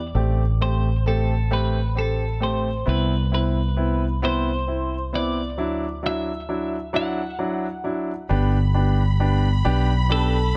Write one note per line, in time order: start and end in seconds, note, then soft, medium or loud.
0.00 0.11 E2 medium
0.00 0.62 D5 medium
0.15 2.83 A1 medium
0.15 0.41 A3 medium
0.15 0.41 C4 medium
0.15 0.42 G4 medium
0.61 0.87 A3 medium
0.61 0.87 C4 soft
0.61 0.87 G4 medium
0.61 1.04 C5 medium
1.06 1.32 A3 medium
1.06 1.32 C4 medium
1.06 1.33 G4 medium
1.06 1.54 A4 medium
1.51 1.77 A3 medium
1.51 1.77 C4 medium
1.51 1.77 G4 medium
1.51 1.99 B4 medium
1.95 2.22 C4 medium
1.95 2.23 G4 medium
1.95 2.44 A4 medium
2.40 2.67 A3 medium
2.40 2.67 C4 medium
2.40 2.68 G4 medium
2.40 2.89 C5 medium
2.86 5.59 C2 medium
2.86 3.12 B3 medium
2.86 3.13 C4 medium
2.86 3.13 E4 medium
2.86 3.33 B4 medium
3.32 3.58 B3 medium
3.32 3.58 C4 medium
3.32 3.58 E4 medium
3.32 4.20 B4 medium
3.77 4.03 B3 medium
3.77 4.03 C4 medium
3.77 4.04 E4 medium
4.22 4.49 B3 medium
4.22 4.49 C4 medium
4.22 4.49 E4 medium
4.22 5.11 C5 medium
4.67 4.94 C4 medium
4.67 4.94 E4 medium
5.13 5.39 B3 medium
5.13 5.39 C4 medium
5.13 5.39 E4 medium
5.13 6.06 D5 medium
5.58 8.26 D2 loud
5.58 5.84 F#3 medium
5.58 5.85 D4 medium
5.58 5.85 E4 medium
6.03 6.29 F#3 medium
6.03 6.29 D4 medium
6.03 6.30 E4 medium
6.03 6.96 E5 loud
6.49 6.75 F#3 medium
6.49 6.75 D4 medium
6.49 6.75 E4 medium
6.93 7.20 F#3 medium
6.93 7.20 D4 medium
6.93 7.20 E4 medium
6.93 7.93 F#5 medium
7.39 7.65 F#3 medium
7.39 7.65 D4 medium
7.39 7.65 E4 medium
7.84 8.10 F#3 medium
7.84 8.11 D4 medium
7.84 8.11 E4 medium
8.29 9.62 G1 loud
8.29 8.56 B3 medium
8.29 8.56 D4 medium
8.29 8.56 G4 medium
8.29 10.57 B5 loud
8.74 9.01 B3 medium
8.74 9.01 D4 medium
8.74 9.01 G4 medium
9.20 9.46 B3 medium
9.20 9.46 D4 medium
9.20 9.46 G4 medium
9.65 10.52 B1 medium
9.65 9.91 B3 medium
9.65 9.91 D4 medium
9.65 9.91 G4 loud
10.09 10.36 B3 medium
10.09 10.36 D4 medium
10.09 10.36 G4 medium
10.09 10.57 A4 medium